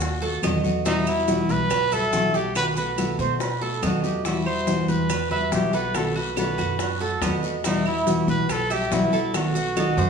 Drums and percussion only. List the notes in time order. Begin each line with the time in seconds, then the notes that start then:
0.00 high bongo, high conga, long guiro, maracas
0.22 high bongo, high conga
0.43 high bongo, low bongo, high conga, short guiro, claves, maracas
0.64 high conga, short guiro, maracas
0.85 high bongo, high conga, long guiro, maracas
1.07 high conga, claves, maracas
1.28 high bongo, high conga, short guiro, maracas
1.49 high bongo, high conga, short guiro, maracas
1.70 high bongo, high conga, low conga, long guiro, claves, maracas
1.92 high bongo, high conga, low conga, maracas
2.13 high bongo, low bongo, high conga, short guiro, maracas
2.34 high bongo, high conga, short guiro, maracas
2.55 high bongo, high conga, long guiro, claves, maracas
2.77 high conga, maracas
2.98 high bongo, high conga, short guiro, claves, maracas
3.19 high bongo, short guiro, maracas
3.40 high bongo, high conga, long guiro, maracas
3.62 high bongo, high conga
3.83 high bongo, low bongo, high conga, short guiro, claves, maracas
4.04 high conga, short guiro, maracas
4.25 high bongo, high conga, long guiro, maracas
4.46 high conga, claves
4.67 high bongo, high conga, short guiro, maracas
4.88 high bongo, high conga, short guiro, maracas
5.09 high bongo, high conga, low conga, long guiro, claves, maracas
5.31 high bongo, high conga, low conga
5.52 high bongo, low bongo, high conga, short guiro, maracas
5.73 high bongo, high conga, short guiro, maracas
5.94 high bongo, high conga, long guiro, claves, maracas
6.16 high conga
6.37 high bongo, high conga, short guiro, claves, maracas
6.58 high bongo, high conga, short guiro, maracas
6.79 high bongo, high conga, long guiro, maracas
7.00 high bongo, high conga
7.22 high bongo, low bongo, high conga, short guiro, claves, maracas
7.43 short guiro, maracas
7.64 high bongo, high conga, long guiro, maracas
7.86 high conga, claves
8.07 high bongo, high conga, short guiro, maracas
8.28 high bongo, high conga, short guiro, maracas
8.49 high bongo, high conga, low conga, long guiro, claves, maracas
8.70 high bongo, high conga, maracas
8.92 high bongo, low bongo, high conga, short guiro, maracas
9.13 high bongo, high conga, short guiro, maracas
9.34 high bongo, long guiro, claves, maracas
9.56 high conga, maracas
9.77 high bongo, high conga, short guiro, claves, maracas
9.98 high bongo, high conga, short guiro, maracas